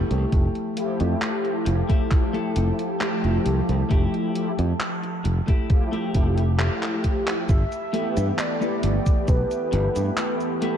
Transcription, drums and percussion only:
0.11 closed hi-hat
0.32 kick, closed hi-hat
0.55 closed hi-hat
0.77 closed hi-hat
1.00 closed hi-hat
1.22 clap, closed hi-hat
1.45 closed hi-hat
1.66 closed hi-hat
1.90 kick, closed hi-hat
2.11 kick, clap, closed hi-hat
2.35 closed hi-hat
2.56 closed hi-hat
2.79 closed hi-hat
3.01 clap, closed hi-hat
3.24 closed hi-hat
3.46 closed hi-hat
3.69 closed hi-hat
3.91 kick, closed hi-hat
4.14 closed hi-hat
4.35 closed hi-hat
4.59 closed hi-hat
4.80 clap, closed hi-hat
5.03 closed hi-hat
5.25 closed hi-hat
5.48 kick, closed hi-hat
5.70 kick, closed hi-hat
5.93 closed hi-hat
6.14 kick, closed hi-hat
6.38 closed hi-hat
6.59 clap, closed hi-hat
6.83 clap, closed hi-hat
7.04 kick, closed hi-hat
7.27 clap, closed hi-hat
7.49 kick, closed hi-hat, cabasa
7.72 closed hi-hat, cabasa
7.94 closed hi-hat
8.17 closed hi-hat, cabasa
8.39 clap, closed hi-hat, cabasa
8.62 closed hi-hat, cabasa
8.83 closed hi-hat
9.06 kick, closed hi-hat, cabasa
9.28 kick, closed hi-hat, cabasa
9.51 closed hi-hat, cabasa
9.73 closed hi-hat
9.96 closed hi-hat, cabasa
10.17 clap, closed hi-hat, cabasa
10.40 closed hi-hat, cabasa
10.62 closed hi-hat

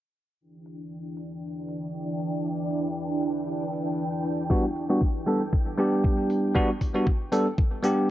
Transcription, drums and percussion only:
0.66 open hi-hat
1.17 open hi-hat
1.68 open hi-hat
2.20 open hi-hat
2.71 open hi-hat
3.22 open hi-hat
3.73 open hi-hat
4.25 open hi-hat
4.50 kick
4.76 open hi-hat
5.01 kick
5.27 open hi-hat
5.53 kick
5.78 open hi-hat
6.04 kick
6.30 open hi-hat
6.55 kick
6.81 kick, open hi-hat
7.07 kick
7.32 open hi-hat
7.58 kick
7.84 open hi-hat

